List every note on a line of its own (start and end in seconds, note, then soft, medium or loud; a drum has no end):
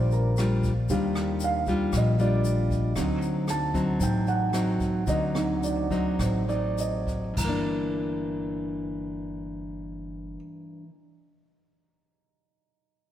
0.00 0.85 A#1 medium
0.00 0.87 A#2 medium
0.00 0.34 G3 medium
0.00 0.85 G3 soft
0.00 0.34 D4 medium
0.00 0.86 D4 soft
0.00 0.34 F4 medium
0.00 0.86 F4 soft
0.00 0.12 C5 medium
0.00 2.21 D5 medium
0.11 0.37 A#4 medium
0.11 closed hi-hat soft
0.11 shaker soft
0.37 0.71 G3 medium
0.37 0.72 D4 medium
0.37 0.72 F4 medium
0.37 cross-stick medium
0.37 closed hi-hat soft
0.37 shaker medium
0.63 kick medium
0.63 closed hi-hat soft
0.63 shaker soft
0.89 1.89 D#2 medium
0.89 1.91 D#3 soft
0.89 1.24 G3 soft
0.89 1.63 G3 soft
0.89 1.24 D4 soft
0.89 1.64 D4 soft
0.89 1.25 F4 soft
0.89 1.64 F4 medium
0.89 kick medium
0.89 closed hi-hat soft
0.89 shaker medium
1.15 cross-stick medium
1.15 closed hi-hat soft
1.15 shaker soft
1.40 closed hi-hat soft
1.40 shaker medium
1.44 1.91 F5 medium
1.66 2.15 G3 medium
1.66 2.15 D4 medium
1.66 2.16 F4 medium
1.66 kick soft
1.66 closed hi-hat soft
1.66 shaker soft
1.93 2.92 A#1 medium
1.93 2.94 A#2 medium
1.93 kick medium
1.93 cross-stick medium
1.93 closed hi-hat soft
1.93 shaker medium
1.97 2.20 D#5 medium
2.19 2.93 G3 medium
2.19 2.93 D4 medium
2.19 2.93 F4 medium
2.19 2.45 D5 medium
2.19 closed hi-hat soft
2.19 shaker soft
2.44 closed hi-hat soft
2.44 shaker medium
2.70 kick soft
2.70 closed hi-hat soft
2.70 shaker soft
2.96 3.97 D2 medium
2.96 3.98 D3 medium
2.96 3.99 F#3 soft
2.96 3.48 F#3 medium
2.96 3.99 C4 soft
2.96 3.49 C4 soft
2.96 3.49 D#4 medium
2.96 4.00 D#4 soft
2.96 kick medium
2.96 cross-stick medium
2.96 closed hi-hat soft
2.96 shaker medium
3.22 closed hi-hat soft
3.22 shaker soft
3.48 3.98 A5 medium
3.48 cross-stick medium
3.48 closed hi-hat soft
3.48 shaker medium
3.74 4.49 F#3 medium
3.74 4.50 C4 medium
3.74 4.50 D#4 medium
3.74 kick medium
3.74 closed hi-hat soft
3.74 shaker soft
4.00 5.03 A1 medium
4.00 5.05 A2 medium
4.00 4.25 F#3 soft
4.00 4.25 C4 soft
4.00 4.25 D#4 soft
4.00 4.28 G5 medium
4.00 kick medium
4.00 closed hi-hat soft
4.00 shaker medium
4.27 4.44 F#5 medium
4.27 closed hi-hat soft
4.27 shaker soft
4.53 5.03 F#3 medium
4.53 5.04 C4 medium
4.53 5.04 D#4 medium
4.53 cross-stick medium
4.53 closed hi-hat soft
4.53 shaker medium
4.80 kick soft
4.80 closed hi-hat soft
4.80 shaker soft
5.07 6.15 D2 medium
5.07 6.16 D3 medium
5.07 5.86 F#3 soft
5.07 5.86 C4 medium
5.07 5.87 D#4 medium
5.07 5.60 D#5 medium
5.07 kick medium
5.07 closed hi-hat soft
5.07 shaker medium
5.35 5.72 F#3 soft
5.35 5.72 C4 soft
5.35 5.73 D#4 soft
5.35 cross-stick medium
5.35 closed hi-hat soft
5.35 shaker soft
5.63 6.16 D5 medium
5.63 closed hi-hat soft
5.63 shaker medium
5.91 6.43 F#3 medium
5.91 6.44 C4 medium
5.91 6.44 D#4 medium
5.91 kick medium
5.91 closed hi-hat soft
5.91 shaker soft
6.19 7.33 A1 medium
6.19 7.33 A2 soft
6.19 6.49 C5 soft
6.19 kick medium
6.19 cross-stick medium
6.19 closed hi-hat soft
6.19 shaker medium
6.48 7.33 F#3 medium
6.48 7.33 C4 medium
6.48 7.33 D#4 medium
6.48 6.77 D5 medium
6.48 closed hi-hat soft
6.48 shaker soft
6.77 7.20 D#5 medium
6.77 closed hi-hat soft
6.77 shaker medium
7.07 kick soft
7.07 closed hi-hat soft
7.07 shaker soft
7.34 10.35 G1 medium
7.34 10.84 G2 soft
7.34 kick medium
7.34 crash soft
7.38 10.90 E3 medium
7.38 10.36 A#5 soft
7.38 shaker medium
7.45 10.95 A#3 medium
7.49 10.99 D4 medium